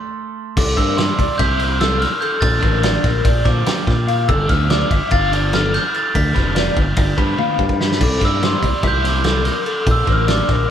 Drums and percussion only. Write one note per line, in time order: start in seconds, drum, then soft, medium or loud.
0.57 kick loud
0.57 crash loud
0.77 kick medium
0.77 ride medium
0.98 snare loud
0.98 ride loud
1.19 kick medium
1.19 ride medium
1.39 kick loud
1.39 snare soft
1.39 ride loud
1.60 ride medium
1.81 snare loud
1.81 ride loud
2.02 snare soft
2.02 ride medium
2.22 ride medium
2.42 kick loud
2.42 ride loud
2.63 kick medium
2.63 ride medium
2.83 snare loud
2.83 ride loud
3.04 kick medium
3.04 snare soft
3.04 ride medium
3.25 kick loud
3.25 ride loud
3.46 kick medium
3.46 snare soft
3.46 ride medium
3.66 snare loud
3.66 ride loud
3.87 kick medium
3.87 snare soft
3.87 ride medium
4.08 ride medium
4.29 kick loud
4.29 ride loud
4.49 kick medium
4.49 snare soft
4.49 ride medium
4.70 snare loud
4.70 ride loud
4.91 kick medium
4.91 ride medium
5.11 kick loud
5.11 ride loud
5.33 ride medium
5.53 snare loud
5.53 ride loud
5.74 snare soft
5.74 ride medium
5.94 ride medium
6.15 kick loud
6.15 ride loud
6.36 kick medium
6.36 snare soft
6.36 ride medium
6.56 snare loud
6.56 ride loud
6.77 kick medium
6.77 ride medium
6.96 kick loud
6.96 ride loud
7.18 kick medium
7.18 ride medium
7.38 high tom medium
7.59 kick medium
7.69 kick medium
7.81 snare loud
7.92 snare medium
8.01 kick loud
8.01 crash loud
8.21 kick medium
8.21 snare soft
8.21 ride medium
8.43 snare loud
8.43 ride loud
8.63 kick medium
8.63 ride medium
8.83 kick loud
8.83 ride loud
9.05 snare soft
9.05 ride medium
9.24 snare loud
9.24 ride loud
9.45 snare soft
9.45 ride medium
9.66 ride medium
9.87 kick loud
9.87 ride loud
10.07 kick medium
10.07 ride medium
10.28 snare loud
10.28 ride loud
10.49 kick medium
10.49 snare soft
10.49 ride medium